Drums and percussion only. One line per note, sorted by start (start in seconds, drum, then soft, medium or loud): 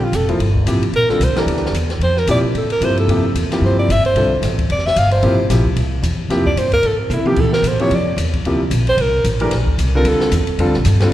0.13 hi-hat pedal medium
0.13 ride medium
0.29 ride soft
0.40 ride medium
0.55 kick medium
0.67 hi-hat pedal medium
0.67 ride medium
0.83 ride soft
0.93 ride soft
1.09 snare soft
1.21 hi-hat pedal medium
1.21 ride medium
1.36 snare medium
1.36 ride soft
1.48 ride medium
1.56 snare soft
1.66 snare soft
1.74 hi-hat pedal medium
1.74 ride medium
1.90 snare soft
1.90 ride soft
2.01 ride medium
2.17 snare soft
2.27 hi-hat pedal medium
2.27 ride medium
2.55 ride medium
2.70 ride medium
2.82 hi-hat pedal medium
2.82 ride medium
2.98 ride soft
3.09 ride medium
3.36 hi-hat pedal medium
3.36 ride medium
3.52 snare soft
3.52 ride medium
3.90 hi-hat pedal medium
3.90 ride medium
4.05 ride soft
4.16 ride medium
4.43 snare soft
4.43 hi-hat pedal medium
4.43 ride medium
4.58 kick medium
4.58 ride soft
4.70 ride medium
4.78 snare soft
4.87 snare soft
4.96 hi-hat pedal medium
4.96 ride medium
5.11 ride soft
5.23 ride medium
5.50 snare soft
5.50 hi-hat pedal medium
5.50 ride medium
5.65 kick medium
5.76 ride medium
6.03 hi-hat pedal medium
6.03 ride medium
6.30 snare soft
6.30 ride medium
6.46 kick medium
6.57 hi-hat pedal medium
6.57 ride medium
6.72 kick soft
6.72 ride soft
6.83 ride medium
7.10 hi-hat pedal medium
7.10 high tom medium
7.26 high tom medium
7.36 kick medium
7.36 crash medium
7.53 snare medium
7.64 hi-hat pedal medium
7.64 ride medium
7.79 ride soft
7.91 ride medium
8.18 hi-hat pedal medium
8.18 ride medium
8.33 kick medium
8.33 ride soft
8.45 ride medium
8.71 hi-hat pedal medium
8.71 ride medium
8.87 ride soft
8.98 ride medium
9.24 hi-hat pedal medium
9.24 ride medium
9.40 ride soft
9.51 snare soft
9.51 ride medium
9.67 kick medium
9.79 hi-hat pedal medium
9.79 ride medium
10.05 ride medium
10.20 snare medium
10.32 hi-hat pedal medium
10.32 ride medium
10.47 ride medium
10.59 ride medium
10.74 snare soft
10.85 hi-hat pedal medium
10.85 ride medium
11.00 snare medium
11.00 ride soft